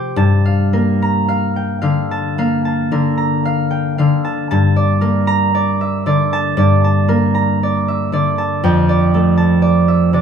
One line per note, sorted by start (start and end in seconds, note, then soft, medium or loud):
0.00 0.21 C3 medium
0.00 2.14 A3 medium
0.00 3.79 G4 medium
0.00 0.22 C5 medium
0.00 1.55 G5 medium
0.00 0.22 C6 medium
0.16 4.06 G2 medium
0.16 2.10 A5 medium
0.45 1.27 F5 medium
0.73 2.37 A#3 soft
0.73 2.91 A#4 medium
1.02 3.16 A#5 medium
1.28 1.80 F5 medium
1.56 2.01 G5 medium
1.82 2.90 D3 medium
1.82 2.37 F5 medium
2.11 2.64 A5 medium
2.38 5.01 A#3 medium
2.38 3.44 F5 medium
2.65 4.23 A5 medium
2.92 3.98 D3 medium
2.92 5.00 A#4 medium
3.18 5.26 A#5 medium
3.45 3.97 F5 medium
3.71 4.14 G5 medium
3.98 4.52 D3 medium
3.98 7.88 F5 medium
4.25 4.50 A5 medium
4.51 6.56 G2 medium
4.51 6.32 A5 medium
4.76 5.53 D5 medium
5.01 7.07 A#3 medium
5.01 7.08 A#4 medium
5.27 7.33 A#5 medium
5.55 6.05 D5 medium
5.81 6.24 E5 soft
6.06 8.11 D3 medium
6.06 6.56 D5 medium
6.33 6.83 A5 medium
6.57 8.67 G2 medium
6.57 7.62 D5 medium
6.84 8.37 A5 medium
7.08 8.66 A#3 medium
7.08 8.67 A#4 medium
7.35 8.66 A#5 medium
7.63 8.12 D5 medium
7.88 8.30 E5 soft
8.12 8.67 D3 medium
8.12 8.88 D5 medium
8.38 9.36 A5 medium
8.64 10.21 F2 medium
8.64 10.21 G5 medium
8.89 9.61 D5 medium
9.14 10.21 A3 medium
9.14 10.21 A4 medium
9.37 10.21 A5 medium
9.62 10.13 D5 medium
9.88 10.21 E5 medium
10.13 10.21 C3 soft
10.13 10.21 D5 medium